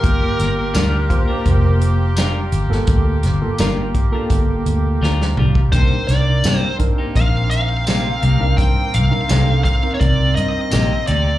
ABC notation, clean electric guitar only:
X:1
M:4/4
L:1/16
Q:1/4=84
K:Gm
V:1 name="Clean electric guitar"
z4 [G,DFB] z2 [DFB] z4 [G,DFB] z3 | z4 [G,DFB] z2 [DFB] z4 [G,DFB] z [G,DFB] z | [C,B,EG] z3 [C,B,EG] z2 [B,EG] z4 [C,B,EG] z [C,B,EG] z | z4 [C,B,EG] z6 z [C,B,EG] z [C,B,EG] z |]